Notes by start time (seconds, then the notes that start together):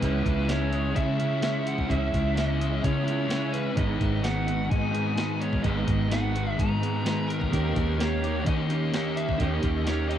Already playing: B3 B4
0.00 C#2 C#3 E3 G#3 C#4 E4, kick, closed hi-hat
0.23 C#2 G#3 C#4 E4, kick, closed hi-hat
0.47 C#3 G#3 B3 C#4 E4 C#5, snare, closed hi-hat
0.70 G#3 C#4 E4 G#4, closed hi-hat
0.94 C#3 G#3 C#4 E5, kick, closed hi-hat
1.17 G#3 B3 C#4 E4, closed hi-hat
1.40 C#3 G#3 C#4 E4, snare, closed hi-hat
1.67 E3 F#5, closed hi-hat
1.78 kick
1.87 C#2 C#3 E3 G#3 C#4 E4 E5, kick, closed hi-hat
2.11 C#2 G#3 C#4 E4, kick, closed hi-hat
2.35 C#3 G#3 B3 C#4 E4 E5, snare, closed hi-hat
2.47 D#5
2.58 G#3 C#4 E4 G#4, closed hi-hat
2.81 C#3 G#3 C#4 C#5, kick, closed hi-hat
2.85 C#4
3.06 G#3 B3 C#4 E4, closed hi-hat
3.29 C#3 G#3 C#4 E4, snare, closed hi-hat
3.53 E3 B4, closed hi-hat
3.75 G#1 G#2 D#3 G#3 B3 D#4 D#5, kick, closed hi-hat
3.99 G#1 G#3 B3 D#4, kick, closed hi-hat
4.21 G#2 D#3 G#3 B3 F#5, snare, closed hi-hat
4.25 D#4
4.46 G#3 B3 D#4 F#4, closed hi-hat
4.68 G#2 D#3 G#3 D#4 G#5, kick, closed hi-hat
4.91 G#3 B3 D#4, closed hi-hat
4.96 D#3
5.15 G#2 D#3 G#3 B3 D#4, snare, closed hi-hat
5.41 B3 C#5, closed hi-hat
5.53 kick
5.62 G#1 G#2 D#3 G#3 B3 D#4 D#5, kick, closed hi-hat
5.86 G#1 G#3 B3 D#4, kick, closed hi-hat
6.09 G#2 D#3 G#3 B3 D#4 F#5, snare, closed hi-hat
6.32 G#3 B3 D#4 F#4, closed hi-hat
6.57 G#2 D#3 G#3 D#4 A#5, kick, closed hi-hat
6.80 G#3 B3 D#4, closed hi-hat
6.84 D#3
7.03 G#2 D#3 G#3 B3 D#4, snare, closed hi-hat
7.28 B3 A#4, closed hi-hat
7.41 kick
7.51 D#2 D#3 A#3 C#4 D#4 G4, kick, closed hi-hat
7.75 D#2 A#3 C#4 G4, kick, closed hi-hat
7.98 D#3 A#3 C#4 D#4 G4 C#5, snare, closed hi-hat
8.22 A#3 C#4 G4, closed hi-hat
8.44 D#3 A#3 C#4 D#4 D#5, kick, closed hi-hat
8.68 A#3 C#4 D#4 G4, closed hi-hat
8.72 A#3
8.93 D#3 A#3 C#4 D#4 G4, snare, closed hi-hat
9.17 A#3 E5, closed hi-hat
9.29 kick
9.38 D#2 D#3 A#3 C#4 G4 D#5, kick, closed hi-hat
9.42 D#4
9.61 D#2 A#3 C#4 G4, kick, closed hi-hat
9.86 D#3 A#3 C#4 D#4 G4 C#5, snare, closed hi-hat
10.09 A#3 C#4 G4 D#5, closed hi-hat